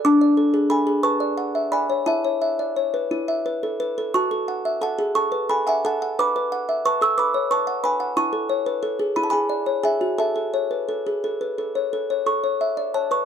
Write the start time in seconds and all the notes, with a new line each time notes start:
0.05 D4 A5 D6
0.21 D5
0.37 A4
0.54 G#4
0.70 A4 G#5 B5
0.87 G#4
1.03 B4 A5 C#6
1.20 D5
1.37 F#5
1.55 E5
1.72 D5 G#5 B5
1.90 C#5
2.06 E4 E5 A5
2.24 C#5
2.42 E5
2.59 D5
2.76 C#5
2.94 B4
3.11 E4
3.28 E5
3.46 B4
3.63 A4
3.80 B4
3.98 A4
4.14 F#4 A5 C#6
4.31 A4
4.48 F#5
4.65 E5
4.81 A4 F#5 A5
4.99 G#4
5.15 A4 A5 C#6
5.32 B4
5.49 A4 G#5 B5
5.67 E5 F#5 G#5
5.85 A4 F#5 A5
6.02 F#5
6.19 B4 B5 D6
6.36 B4
6.52 F#5
6.69 E5
6.85 B4 A5 C#6
7.01 A4 C#6 E6
7.18 B4 B5 D6
7.34 C#5
7.51 B4 A5 C#6
7.67 F#5
7.84 B4 G#5 B5
8.00 F#5
8.17 E4 A5 C#6
8.33 A4
8.49 C#5
8.66 B4
8.83 A4
8.99 G#4
9.16 E4 B5
9.23 A5
9.30 G#4 G#5 B5
9.50 D5
9.66 C#5
9.83 G#4 E5 G#5
10.01 F#4
10.18 A4 E5 A5
10.36 A4
10.54 C#5
10.71 B4
10.89 A4
11.07 G#4
11.24 A4
11.41 B4
11.58 A4
11.75 C#5
11.93 A4
12.10 C#5
12.26 A4 C#6
12.44 C#5
12.61 E5
12.77 D5
12.94 C#5 A5
13.11 B4 C#6